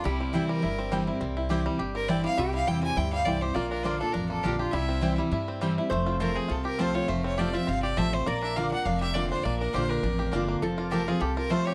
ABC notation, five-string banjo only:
X:1
M:4/4
L:1/8
Q:"Swing" 1/4=204
K:F
V:1 name="Five-string banjo"
G, C E G, E C G, E | C E G G, G C E G, | G, E G, C E G, E G | B, D B, D D B, D G |
G, C E G, E C G, E | A, F A, C F G C F | A, C G F C G C A, | B, D B, D D G D D |
B, D G D D G D B, | F, F G F G F A, G |]